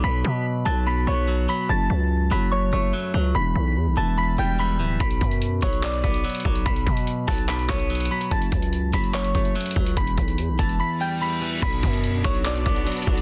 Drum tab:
CC |--------------------------------|--------------------------------|--------------------------------|--------------------------------|
HH |--------------------------------|--------------------------------|--------------------------------|x-x-x-x-x---x-x-x-x-x-x-xxxx--x-|
CP |--------------------------------|--------------------------------|--------------------------------|----------------x---------------|
BD |--------------------------------|--------------------------------|--------------------------------|o---o-------o-------o-------o---|

CC |--------------------------------|--------------------------------|--------------------------------|x-------------------------------|
HH |x-x-x-x-x---o-x-x-x-x-x-xxxx--x-|x-x-x-x-x---x-x-x-x-x-x-xxxx--x-|x-x-x-x-x---x-x-----------------|x-x-x-x-x---x-x-x-x-x-x-xxxx--x-|
CP |----------------x---x-----------|----------------x---------------|--------------------------------|----------------x---------------|
BD |o---o-------o-------o-----------|o---o-------o-------o-------o---|o---o-------o-------------------|o---o-------o-------o-------o---|